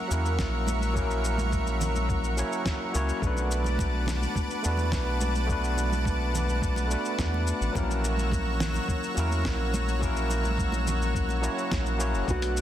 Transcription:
Already playing: F#3 A#3 C#4 E4 A#4 E5 F#5 C#6
0.08 E2 F#3 A#3 C#4, cabasa
0.12 E4 A#4
0.25 cabasa
0.39 A#1, kick, snare, cabasa
0.67 high conga, cabasa
0.82 cabasa
0.93 F#3 A#3 C#4, kick, cabasa
0.97 E4 A#4
1.11 cabasa
1.25 cabasa
1.38 high conga, cabasa
1.52 kick, cabasa
1.67 cabasa
1.80 low conga, cabasa
1.95 high conga, cabasa
2.09 kick, cabasa
2.24 cabasa
2.37 F#3 A#3 C#4 E4 C#5, cabasa
2.52 cabasa
2.66 kick, snare, cabasa
2.93 C#2 F#3 A#3 C#4 E4 C#5, cabasa
3.09 cabasa
3.21 B1 A3 B3 D4 B4 F#5 A5 D6, kick, cabasa
3.25 F#4 B4
3.37 muted conga, cabasa
3.51 cabasa
3.64 high conga, cabasa
3.79 kick, muted conga, cabasa
4.06 snare, low conga, cabasa
4.22 high conga, cabasa
4.36 kick, muted conga, cabasa
4.50 cabasa
4.62 E2 A3 B3 D4, cabasa
4.67 F#4 B4
4.78 muted conga, cabasa
4.92 B1, kick, snare, cabasa
5.21 high conga, cabasa
5.35 muted conga, cabasa
5.46 A3 B3 D4, kick, cabasa
5.51 F#4 B4
5.64 cabasa
5.77 muted conga, cabasa
5.92 high conga, cabasa
6.05 kick, cabasa
6.34 muted conga, low conga, cabasa
6.49 high conga, cabasa
6.62 kick, cabasa
6.76 muted conga, cabasa
6.87 A3 B3 D4, cabasa
6.91 F#4 B4
7.05 cabasa
7.19 E2, kick, snare, cabasa
7.34 muted conga
7.47 cabasa
7.61 A1, cabasa
7.72 A#1 F#3 A#3 C#4, kick, muted conga
7.76 E4 A#4 C#5 A#5 E6, cabasa
7.91 cabasa
8.04 cabasa
8.17 high conga, cabasa
8.32 kick, muted conga, cabasa
8.60 snare, low conga, cabasa
8.74 muted conga, high conga, cabasa
8.88 kick, cabasa
9.03 cabasa
9.14 E2 F#3 A#3 C#4, cabasa
9.19 E4 A#4
9.31 muted conga, cabasa
9.45 A#1, kick, snare, cabasa
9.74 muted conga, high conga, cabasa
9.88 cabasa
9.99 F#3 A#3 C#4, kick, cabasa
10.03 E4 A#4
10.16 cabasa
10.30 muted conga, cabasa
10.44 high conga, cabasa
10.58 kick, cabasa
10.72 muted conga, cabasa
10.87 low conga, cabasa
11.02 high conga, cabasa
11.15 kick, cabasa
11.29 muted conga, cabasa
11.41 F#3 A#3 C#4 E4 C#5, cabasa
11.58 cabasa
11.71 A#1, kick, snare, muted conga, cabasa
11.86 cabasa
11.98 F#3 A#3 C#4 E4 C#5, cabasa
12.14 F#1, cabasa
12.25 B1 A3 B3 D4 B4 A5 D6, kick, cabasa
12.29 F#4 B4
12.42 closed hi-hat, muted conga, cabasa
12.57 cabasa

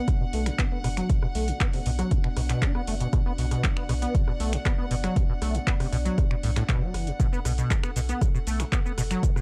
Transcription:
Already playing: B3 D4 F#4 D5 F#5
0.08 B2, kick, cross-stick, closed hi-hat
0.21 B2
0.33 B1 A3, open hi-hat
0.46 B2, finger snap, cross-stick, closed hi-hat
0.59 B3, kick, clap, closed hi-hat
0.72 B3
0.84 F#1 B2, cross-stick, open hi-hat
0.97 F#3, finger snap, closed hi-hat
1.10 B2, kick, closed hi-hat
1.23 B2, cross-stick
1.35 B1 A3, open hi-hat
1.48 B2, closed hi-hat
1.60 B3, kick, cross-stick, clap, closed hi-hat
1.73 C3, open hi-hat
1.86 B1 B2, open hi-hat
1.99 F#3, cross-stick, closed hi-hat
2.11 B2, kick, closed hi-hat
2.24 B2, finger snap
2.37 B1 B2, cross-stick, open hi-hat
2.50 B2, finger snap, clap, closed hi-hat
2.62 D4, kick, clap, closed hi-hat
2.75 B3, cross-stick
2.87 F#1 A3, open hi-hat
3.00 B2, closed hi-hat
3.13 B2, kick, cross-stick, closed hi-hat
3.26 B3
3.38 B1 B2, open hi-hat
3.51 B2, cross-stick, closed hi-hat
3.64 B3, kick, clap, closed hi-hat
3.77 B3, finger snap
3.89 B1 B2, cross-stick, open hi-hat
4.02 B3, closed hi-hat
4.15 B2, kick, closed hi-hat
4.28 B2, cross-stick
4.40 B1 A3, open hi-hat
4.53 B2, finger snap, closed hi-hat
4.65 B3, kick, cross-stick, clap, closed hi-hat
4.78 B3
4.91 F#1 B2, open hi-hat
5.04 F#3, finger snap, cross-stick, closed hi-hat
5.16 B2, kick, closed hi-hat
5.29 B2
5.42 B1 A3, cross-stick, open hi-hat
5.55 B2, closed hi-hat
5.67 B3, kick, clap, closed hi-hat
5.80 C3, cross-stick, open hi-hat
5.93 B1 B2, open hi-hat
6.05 F#3, closed hi-hat
6.18 B2, kick, cross-stick, closed hi-hat
6.31 B2, finger snap
6.43 B1 A2, open hi-hat
6.56 A2, finger snap, cross-stick, clap, closed hi-hat
6.69 B2, kick, clap, closed hi-hat
6.82 F#3
6.94 F#1 E3, cross-stick, open hi-hat
7.07 B2, closed hi-hat
7.20 B2 A4, kick, closed hi-hat, shaker
7.33 B3, shaker
7.45 B1 B2, cross-stick, open hi-hat, shaker
7.58 B2, closed hi-hat, shaker
7.70 B3, kick, clap, closed hi-hat, shaker
7.83 B3, finger snap, cross-stick, shaker
7.96 B1 B2, open hi-hat, shaker
8.09 B3, closed hi-hat, shaker
8.21 B2, kick, cross-stick, closed hi-hat, shaker
8.34 B2, shaker
8.47 B1 A3, open hi-hat, shaker
8.60 B2, finger snap, cross-stick, closed hi-hat, shaker
8.72 B3, kick, clap, closed hi-hat, shaker
8.85 B3, shaker
8.98 F#1 B2, cross-stick, open hi-hat, shaker
9.11 F#3, finger snap, closed hi-hat, shaker
9.23 B2, kick, closed hi-hat, shaker
9.36 B2, cross-stick, shaker

